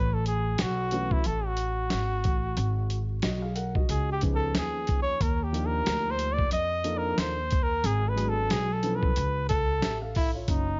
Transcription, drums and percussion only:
0.26 closed hi-hat
0.58 snare, closed hi-hat
0.91 closed hi-hat
1.11 kick
1.24 closed hi-hat
1.57 closed hi-hat
1.90 snare, closed hi-hat
2.24 kick, closed hi-hat
2.57 closed hi-hat
2.90 closed hi-hat
3.22 snare, closed hi-hat
3.56 closed hi-hat
3.75 kick
3.89 closed hi-hat
4.21 kick, closed hi-hat
4.55 snare, closed hi-hat
4.87 kick, closed hi-hat
5.21 kick, closed hi-hat
5.54 closed hi-hat
5.86 snare, closed hi-hat
6.19 closed hi-hat
6.39 kick
6.51 closed hi-hat
6.84 closed hi-hat
7.18 snare, closed hi-hat
7.51 kick, closed hi-hat
7.84 closed hi-hat
8.18 closed hi-hat
8.50 snare, closed hi-hat
8.83 closed hi-hat
9.03 kick
9.16 closed hi-hat
9.49 kick, closed hi-hat
9.82 snare, closed hi-hat
10.15 kick, open hi-hat
10.48 kick, closed hi-hat

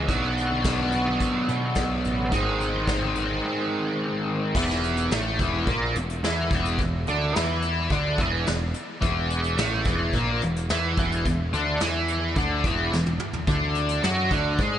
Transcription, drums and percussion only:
0.09 kick, closed hi-hat
0.38 closed hi-hat
0.52 high conga
0.64 kick, snare, closed hi-hat
0.79 high conga
0.92 closed hi-hat, low conga
1.08 high conga
1.20 kick, closed hi-hat
1.49 closed hi-hat, low conga
1.75 kick, snare, closed hi-hat
2.05 closed hi-hat, low conga
2.19 high conga
2.32 kick, closed hi-hat
2.60 closed hi-hat, high conga
2.74 high conga
2.88 kick, snare, closed hi-hat
3.02 high conga
3.15 closed hi-hat, low conga
3.30 high conga
4.55 kick, crash
4.70 snare
4.84 closed hi-hat
4.97 closed hi-hat
5.11 snare, closed hi-hat
5.39 kick, closed hi-hat
5.67 kick, closed hi-hat
5.95 closed hi-hat
6.10 closed hi-hat
6.24 snare, closed hi-hat
6.50 kick, closed hi-hat
6.65 closed hi-hat
6.79 kick, closed hi-hat
7.07 closed hi-hat
7.35 snare, closed hi-hat
7.62 closed hi-hat
7.90 kick, closed hi-hat
8.18 kick, closed hi-hat
8.47 snare, closed hi-hat
8.74 closed hi-hat
9.02 kick, closed hi-hat
9.30 closed hi-hat
9.44 closed hi-hat
9.58 snare, closed hi-hat
9.85 kick, closed hi-hat
10.13 kick, closed hi-hat
10.42 closed hi-hat
10.56 closed hi-hat
10.69 snare, closed hi-hat
10.97 kick, closed hi-hat
11.12 closed hi-hat
11.26 kick, closed hi-hat
11.53 closed hi-hat
11.80 snare, closed hi-hat
12.08 closed hi-hat
12.36 kick, closed hi-hat
12.64 kick, closed hi-hat
12.93 snare
13.06 high tom
13.20 mid tom
13.33 floor tom
13.47 kick, closed hi-hat
13.75 closed hi-hat
13.89 closed hi-hat
14.03 snare, closed hi-hat
14.31 kick, closed hi-hat
14.58 kick, closed hi-hat

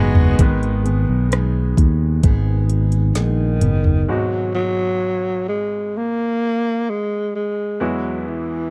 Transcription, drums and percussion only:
0.15 floor tom
0.39 kick, closed hi-hat
0.63 closed hi-hat
0.86 closed hi-hat
1.32 cross-stick, closed hi-hat
1.77 kick, closed hi-hat
2.23 kick, closed hi-hat
2.69 closed hi-hat
2.92 closed hi-hat
3.15 snare, closed hi-hat
3.61 closed hi-hat, mid tom
3.84 floor tom

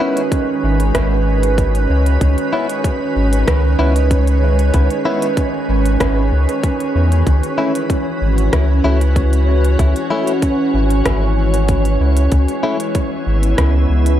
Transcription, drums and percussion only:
0.17 closed hi-hat
0.32 kick, closed hi-hat
0.80 closed hi-hat
0.95 kick, cross-stick, closed hi-hat
1.43 closed hi-hat
1.58 kick, closed hi-hat
1.75 closed hi-hat
2.06 closed hi-hat
2.21 kick, closed hi-hat
2.38 closed hi-hat
2.70 closed hi-hat
2.84 kick, closed hi-hat
3.33 closed hi-hat
3.48 kick, cross-stick, closed hi-hat
3.96 closed hi-hat
4.11 kick, closed hi-hat
4.27 closed hi-hat
4.59 closed hi-hat
4.74 kick, closed hi-hat
4.90 closed hi-hat
5.22 closed hi-hat
5.37 kick, closed hi-hat
5.86 closed hi-hat
6.00 kick, cross-stick, closed hi-hat
6.49 closed hi-hat
6.63 kick, closed hi-hat
6.80 closed hi-hat
7.12 closed hi-hat
7.27 kick, closed hi-hat
7.43 closed hi-hat
7.75 closed hi-hat
7.90 kick, closed hi-hat
8.38 closed hi-hat
8.53 kick, cross-stick, closed hi-hat
9.01 closed hi-hat
9.16 kick, closed hi-hat
9.33 closed hi-hat
9.64 closed hi-hat
9.79 kick, closed hi-hat
9.96 closed hi-hat
10.27 closed hi-hat
10.42 kick, closed hi-hat
10.90 closed hi-hat
11.05 kick, cross-stick, closed hi-hat
11.54 closed hi-hat
11.68 kick, closed hi-hat
11.85 closed hi-hat
12.17 closed hi-hat
12.32 kick, closed hi-hat
12.48 closed hi-hat
12.80 closed hi-hat
12.95 kick, closed hi-hat
13.43 closed hi-hat
13.58 kick, cross-stick, closed hi-hat
14.06 closed hi-hat

